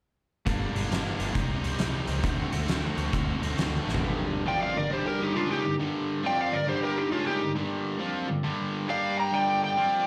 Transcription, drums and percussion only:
0.47 kick medium
0.47 closed hi-hat medium
0.76 closed hi-hat soft
0.92 snare medium
0.92 closed hi-hat medium
1.20 closed hi-hat medium
1.35 kick medium
1.35 closed hi-hat medium
1.64 closed hi-hat medium
1.79 snare medium
1.79 closed hi-hat medium
2.07 closed hi-hat medium
2.23 kick loud
2.23 closed hi-hat medium
2.52 closed hi-hat medium
2.68 snare medium
2.68 closed hi-hat medium
2.98 closed hi-hat medium
3.13 kick medium
3.13 closed hi-hat medium
3.43 closed hi-hat soft
3.58 snare medium
3.58 closed hi-hat medium
3.89 snare soft
3.94 floor tom medium

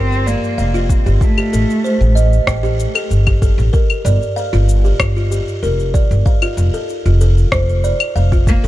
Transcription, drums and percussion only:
0.12 shaker soft
0.27 shaker medium
0.44 shaker soft
0.59 shaker soft
0.75 shaker soft
0.89 kick loud
0.89 shaker medium
1.07 shaker soft
1.21 kick loud
1.21 shaker soft
1.38 claves medium
1.38 shaker soft
1.54 shaker medium
1.70 shaker soft
1.85 shaker soft
2.02 shaker soft
2.17 shaker medium
2.33 shaker soft
2.47 kick medium
2.47 cross-stick medium
2.47 shaker soft
2.65 shaker soft
2.80 shaker medium
2.95 claves medium
2.95 shaker soft
3.11 shaker soft
3.27 kick medium
3.27 claves medium
3.27 shaker soft
3.42 kick loud
3.42 shaker medium
3.59 shaker soft
3.74 kick loud
3.74 shaker soft
3.90 claves medium
3.90 shaker soft
4.06 shaker medium
4.22 shaker soft
4.37 shaker soft
4.54 shaker soft
4.69 shaker medium
4.85 shaker soft
5.00 kick medium
5.00 cross-stick medium
5.00 claves medium
5.00 shaker soft
5.17 shaker soft
5.32 shaker medium
5.48 shaker soft
5.63 shaker soft
5.80 shaker soft
5.94 kick loud
5.94 shaker medium
6.11 shaker soft
6.26 kick loud
6.26 shaker soft
6.42 claves medium
6.42 shaker soft
6.58 shaker medium
6.74 shaker soft
6.89 shaker soft
7.06 shaker soft
7.21 shaker medium
7.38 shaker soft
7.52 kick medium
7.52 cross-stick medium
7.52 shaker soft
7.69 shaker soft
7.84 shaker medium
8.00 claves medium
8.00 shaker soft
8.16 shaker soft
8.32 kick medium
8.32 shaker soft
8.47 kick medium
8.47 shaker medium
8.64 shaker soft

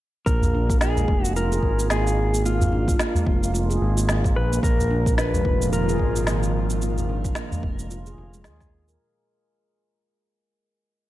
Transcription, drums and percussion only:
0.26 kick loud
0.26 shaker soft
0.42 udu medium
0.42 shaker soft
0.70 kick loud
0.70 shaker medium
0.81 snare medium
0.81 shaker soft
0.96 udu medium
0.96 shaker soft
1.08 kick loud
1.25 shaker medium
1.36 shaker soft
1.52 shaker soft
1.63 kick medium
1.79 shaker medium
1.90 snare medium
1.90 shaker medium
2.07 shaker soft
2.34 shaker medium
2.46 shaker soft
2.61 udu medium
2.61 shaker soft
2.88 kick loud
2.88 shaker medium
2.99 snare loud
2.99 shaker medium
3.15 udu medium
3.15 shaker soft
3.27 kick loud
3.43 shaker medium
3.55 shaker medium
3.71 shaker soft
3.98 shaker medium
4.09 snare medium
4.09 shaker soft
4.24 kick loud
4.24 shaker soft
4.53 shaker medium
4.63 kick loud
4.63 shaker medium
4.79 udu medium
4.79 shaker soft
5.06 kick loud
5.06 shaker medium
5.18 snare loud
5.18 shaker medium
5.34 udu medium
5.34 shaker soft
5.45 kick loud
5.62 shaker medium
5.73 shaker medium
5.89 shaker soft
5.99 kick medium
6.16 shaker medium
6.27 snare medium
6.27 shaker medium
6.43 shaker soft
6.70 shaker medium
6.82 shaker medium
6.98 udu medium
6.98 shaker soft
7.25 kick loud
7.25 shaker medium
7.35 snare loud
7.35 shaker medium
7.52 udu medium
7.52 shaker soft
7.63 kick loud
7.79 shaker medium
7.91 shaker medium
8.06 shaker soft
8.34 shaker medium
8.44 snare medium
8.44 shaker soft
8.60 kick loud
8.60 snare soft
8.60 shaker soft
8.88 shaker medium

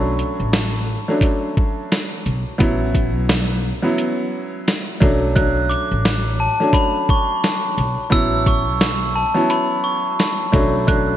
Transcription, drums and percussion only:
0.19 closed hi-hat medium
0.53 snare loud
0.53 closed hi-hat medium
1.21 kick medium
1.21 closed hi-hat medium
1.57 kick medium
1.92 snare loud
1.92 closed hi-hat medium
2.26 closed hi-hat soft
2.60 kick loud
2.60 closed hi-hat loud
2.95 kick medium
2.95 closed hi-hat medium
3.29 snare loud
3.29 closed hi-hat medium
3.98 closed hi-hat medium
4.68 snare loud
4.68 closed hi-hat medium
5.02 kick loud
5.02 closed hi-hat soft
5.36 kick loud
5.36 closed hi-hat medium
5.71 closed hi-hat medium
6.05 snare loud
6.05 closed hi-hat medium
6.73 kick medium
6.73 closed hi-hat medium
7.09 kick medium
7.44 snare loud
7.44 closed hi-hat medium
7.78 closed hi-hat soft
8.12 kick loud
8.12 closed hi-hat loud
8.46 kick medium
8.46 closed hi-hat medium
8.81 snare loud
8.81 closed hi-hat medium
9.50 closed hi-hat medium
10.19 snare loud
10.19 closed hi-hat medium
10.54 kick medium
10.54 closed hi-hat soft
10.88 kick loud
10.88 closed hi-hat medium

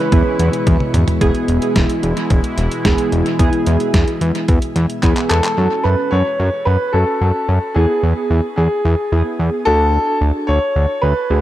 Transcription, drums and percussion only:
0.12 kick loud
0.12 closed hi-hat medium
0.39 closed hi-hat medium
0.53 closed hi-hat medium
0.67 kick loud
0.67 closed hi-hat medium
0.67 high tom medium
0.80 mid tom medium
0.94 closed hi-hat medium
0.94 mid tom medium
1.08 closed hi-hat medium
1.08 floor tom medium
1.21 kick loud
1.21 closed hi-hat medium
1.35 closed hi-hat soft
1.48 closed hi-hat medium
1.62 closed hi-hat medium
1.76 kick loud
1.76 snare loud
1.76 closed hi-hat medium
1.90 closed hi-hat medium
2.03 closed hi-hat medium
2.17 closed hi-hat medium
2.30 kick loud
2.30 closed hi-hat medium
2.44 closed hi-hat medium
2.58 closed hi-hat medium
2.71 closed hi-hat medium
2.85 kick loud
2.85 snare loud
2.85 closed hi-hat medium
2.98 closed hi-hat medium
3.12 closed hi-hat medium
3.26 closed hi-hat medium
3.39 kick loud
3.39 closed hi-hat medium
3.53 closed hi-hat soft
3.66 closed hi-hat medium
3.80 closed hi-hat medium
3.94 kick loud
3.94 snare loud
3.94 closed hi-hat medium
4.08 closed hi-hat medium
4.21 closed hi-hat medium
4.35 closed hi-hat soft
4.48 kick loud
4.48 closed hi-hat medium
4.62 closed hi-hat medium
4.76 closed hi-hat medium
4.90 closed hi-hat medium
5.03 kick loud
5.03 clap medium
5.03 closed hi-hat medium
5.16 clap medium
5.16 closed hi-hat medium
5.30 clap medium
5.30 closed hi-hat medium
5.44 clap medium
5.44 closed hi-hat medium

